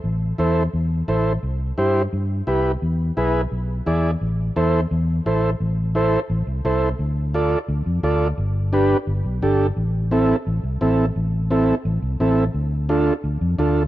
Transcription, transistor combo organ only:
\new Staff \with { instrumentName = "Transistor combo organ" } { \time 4/4 \key a \minor \tempo 4 = 173 r4 <e' a' c''>8 r4. <e' a' c''>8 r8 | r4 <e' g' c''>8 r4. <e' g' b'>8 r8 | r4 <e' gis' b'>8 r4. <e' gis' d''>8 r8 | r4 <e' a' c''>8 r4. <e' a' c''>8 r8 |
r4 <e' a' c''>8 r4. <e' a' c''>8 r8 | r4 <f' a' d''>8 r4. <f' a' d''>8 r8 | r4 <d' g' b'>8 r4. <d' g' a'>8 r8 | r4 <c' e' a'>8 r4. <c' e' a'>8 r8 |
r4 <c' e' a'>8 r4. <c' e' a'>8 r8 | r4 <d' f' a'>8 r4. <d' f' a'>8 r8 | }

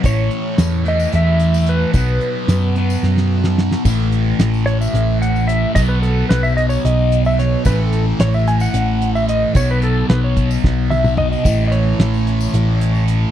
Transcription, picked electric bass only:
\new Staff \with { instrumentName = "Picked electric bass" } { \clef bass \time 7/8 \key a \lydian \tempo 4 = 110 a,,8 r8 e,4 e,4. | b,,8 r8 fis,4 fis,4. | a,,4 a,,4 a,,4. | b,,4 b,,4 b,,4. |
a,,4 a,,4 a,,4. | b,,4 b,,4 b,,4. | a,,4 a,,4 a,,4. | }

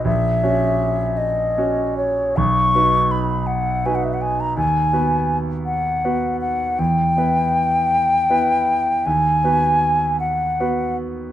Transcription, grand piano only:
\new Staff \with { instrumentName = "Grand piano" } { \time 6/8 \key b \major \tempo 4. = 53 ais,,8 <cis' fis' cis''>4. <cis' fis' cis''>4 | b,,8 <dis' fis' b'>4. <dis' fis' b'>4 | dis,8 <b fis' b'>4. <b fis' b'>4 | e,8 <b e' b'>4. <b e' b'>4 |
dis,8 <b fis' b'>4. <b fis' b'>4 | }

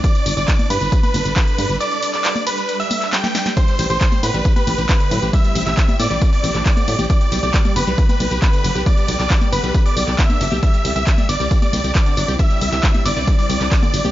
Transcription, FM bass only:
\new Staff \with { instrumentName = "FM bass" } { \clef bass \time 4/4 \key g \major \tempo 4 = 136 r8 g,,16 g,,16 r8 g,16 g,,16 r8 g,,16 g,,16 r8 g,16 g,,16 | r1 | r8 a,,16 a,,16 r8 a,16 a,,16 r8 a,,16 a,,16 r8 a,16 a,,16 | r8 a,,16 a,,16 r8 a,16 a,,16 r8 a,,16 a,,16 r8 a,16 a,,16 |
r8 b,,16 b,,16 r8 fis,,16 b,,16 r8 b,,16 b,,16 r8 fis,,16 b,,16 | r8 b,,16 b,,16 r8 fis,,16 b,,16 r8 b,,16 b,,16 r8 fis,,16 b,,16 | r8 c,16 c,16 r8 g,,16 c,16 r8 c,16 c,16 r8 g,,16 c,16 | r8 c,16 c,16 r8 g,,16 c,16 r8 c,16 c,16 r8 g,,16 c,16 | }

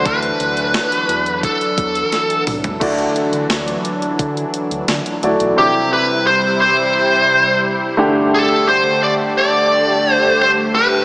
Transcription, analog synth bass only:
\new Staff \with { instrumentName = "Analog synth bass" } { \clef bass \time 4/4 \key d \mixolydian \tempo 4 = 87 d,8 d,8. r16 e,8. r16 e,8 r8 c,8 | d,8 r16 d16 d,8 r8 d8 r16 d,16 d16 r16 d,16 b,,16 | r1 | r1 | }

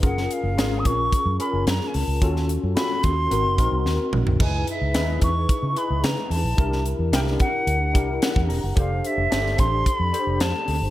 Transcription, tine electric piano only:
\new Staff \with { instrumentName = "Tine electric piano" } { \time 4/4 \key fis \major \tempo 4 = 110 << { r1 | r1 | r1 | r2. fis''8 bes''8 |
r1 | } \\ { <cis' eis' gis' ais'>8 r8 <cis' eis' gis' ais'>4 r8 <cis' eis' gis' ais'>4 r8 | <cis' eis' fis' a'>8 r8 <cis' eis' fis' a'>4 <bis dis' fis' ais'>8 <bis dis' fis' ais'>4 r8 | <dis' e' gis' b'>8 r8 <dis' e' gis' b'>4 r8 <dis' e' gis' b'>4 r8 | <d' e' g' bes'>8 r8 <d' e' g' bes'>4 r8 <d' e' g' bes'>4 r8 |
<d' g' a' c''>8 r8 <d' g' a' c''>4 r8 <d' g' a' c''>4 r8 | } >> }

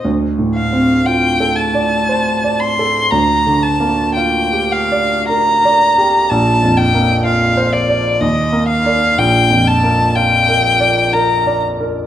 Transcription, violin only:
\new Staff \with { instrumentName = "Violin" } { \time 3/4 \key bes \major \tempo 4 = 60 r8 f''8 g''8 a''4 c'''8 | bes''8 a''8 g''8 f''8 bes''4 | a''8 g''8 f''8 d''8 ees''8 f''8 | g''8 a''8 g''4 bes''8 r8 | }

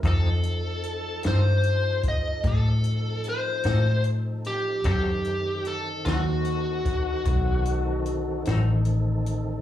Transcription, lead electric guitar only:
\new Staff \with { instrumentName = "Lead electric guitar" } { \time 12/8 \key f \major \tempo 4. = 50 a'4. c''4 ees''8 a'4 c''4 r8 g'8 | g'4 a'8 fis'2. r4. | }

